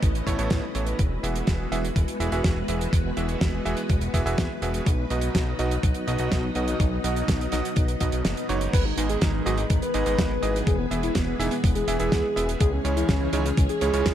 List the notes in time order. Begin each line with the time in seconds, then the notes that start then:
Already playing: A3 C#4 E4 B4 D#5
0.03 A1, kick, closed hi-hat
0.15 closed hi-hat
0.26 A1 A2 B3 E4 A4 C#5, kick, closed hi-hat
0.39 A1 A2 B3 E4 A4 C#5, closed hi-hat
0.50 A2, kick, snare, closed hi-hat
0.75 A1 E3 B3 E4 A4 C#5, closed hi-hat
0.86 closed hi-hat
0.99 E1 G#3 B3 F#4 B4, kick, closed hi-hat
1.23 E1 E3 B3 F#4 G#4 E5, closed hi-hat
1.35 closed hi-hat
1.47 E1, kick, snare, closed hi-hat
1.71 E1 E3 B3 F#4 G#4 E5, closed hi-hat
1.84 closed hi-hat
1.96 E1, kick, closed hi-hat
2.08 closed hi-hat
2.20 E1 E3 B3 F#4 G#4 E5, closed hi-hat
2.32 E1 E3 B3 F#4 G#4 E5, closed hi-hat
2.44 E1, kick, snare, closed hi-hat
2.68 E1 E3 B3 F#4 G#4 E5, closed hi-hat
2.81 closed hi-hat
2.93 E1, kick, closed hi-hat
3.17 E1 E3 B3 F#4 G#4 E5, closed hi-hat
3.29 closed hi-hat
3.41 E1, kick, snare, closed hi-hat
3.65 E1 E3 B3 F#4 G#4 E5, closed hi-hat
3.77 closed hi-hat
3.89 E1, kick, closed hi-hat
4.01 closed hi-hat
4.14 E1 E3 B3 F#4 G#4 E5, kick, closed hi-hat
4.26 E1 E3 B3 F#4 G#4 E5, closed hi-hat
4.38 E2, kick, snare, closed hi-hat
4.62 E1 B2 B3 F#4 G#4 E5, closed hi-hat
4.74 closed hi-hat
4.86 B1 F#3 B3 D#4 D#5, kick, closed hi-hat
5.10 B1 B2 B3 D#4 F#4 D#5, closed hi-hat
5.21 closed hi-hat
5.35 B1, kick, snare, closed hi-hat
5.59 B1 B2 B3 D#4 F#4 D#5, closed hi-hat
5.71 closed hi-hat
5.83 B1, kick, closed hi-hat
5.94 closed hi-hat
6.07 B1 B2 B3 D#4 F#4 D#5, closed hi-hat
6.18 B1 B2 B3 D#4 F#4 D#5, closed hi-hat
6.32 B1, kick, snare, closed hi-hat
6.55 B1 B2 B3 D#4 F#4 D#5, closed hi-hat
6.68 closed hi-hat
6.80 B1, kick, closed hi-hat
7.04 B1 B2 B3 D#4 F#4 D#5, closed hi-hat
7.16 closed hi-hat
7.28 B1, kick, snare, closed hi-hat
7.41 closed hi-hat
7.52 B1 B2 B3 D#4 F#4 D#5, snare, closed hi-hat
7.65 closed hi-hat
7.76 B1, kick, closed hi-hat
7.88 closed hi-hat
8.01 B1 B2 B3 D#4 F#4 D#5, kick, closed hi-hat
8.12 B1, closed hi-hat
8.25 F#1, snare, closed hi-hat
8.37 closed hi-hat
8.49 F#1 G#2 B3 D#4 F#4 C#5, closed hi-hat
8.61 closed hi-hat
8.73 G#1 D#3 G#3 B3 G#4 B4, kick, closed hi-hat, crash
8.85 D#4
8.97 G#1 G#2 B3 D#4 G#4 D#5, closed hi-hat
9.09 G#4, closed hi-hat
9.21 G#1 D#4, kick, snare, closed hi-hat
9.34 D#4
9.46 G#1 G#2 B3 D#4 F#4 G#4 D#5, closed hi-hat
9.58 D#4, closed hi-hat
9.70 G#1 D#4, kick, closed hi-hat
9.82 B4, closed hi-hat
9.94 G#1 G#2 B3 D#4 G#4 D#5, closed hi-hat
10.06 G#1 G#2 B3 D#4 G#4 D#5, closed hi-hat
10.18 G#1, kick, snare, closed hi-hat
10.43 G#1 E3 B3 D#4 G#4 D#5, closed hi-hat
10.56 closed hi-hat
10.67 E1 E3 G#3 G#4, kick, closed hi-hat
10.79 B3
10.91 E1 E3 B3 E4 G#4 E5, closed hi-hat
11.03 E4, closed hi-hat
11.15 E1 B3, kick, snare, closed hi-hat
11.27 B3
11.39 E1 E3 B3 D#4 E4 G#4 E5, closed hi-hat
11.51 B3, closed hi-hat
11.63 E1 B3, kick, closed hi-hat
11.75 G#4, closed hi-hat
11.88 E1 E3 B3 E4 G#4 E5, closed hi-hat
12.00 E1 E3 B3 E4 G#4 E5, closed hi-hat
12.12 E2, kick, snare, closed hi-hat
12.36 E1 B3 E4 G#4 E5, closed hi-hat
12.49 closed hi-hat
12.60 C#2 G#3 C#4 G#4 C#5, kick, closed hi-hat
12.73 C#4
12.85 C#2 C#3 G#3 C#4 E4 C#5, closed hi-hat
12.97 E4, closed hi-hat
13.09 C#2 C#4, kick, snare, closed hi-hat
13.21 C#4
13.33 C#2 C#3 G#3 C#4 D#4 E4 C#5, closed hi-hat
13.45 C#4, closed hi-hat
13.57 C#2 C#4, kick, closed hi-hat
13.69 G#4, closed hi-hat
13.81 C#2 C#3 G#3 C#4 E4 C#5, closed hi-hat
13.94 C#2 C#3 G#3 C#4 E4 C#5, closed hi-hat
14.06 C#2, kick, snare, closed hi-hat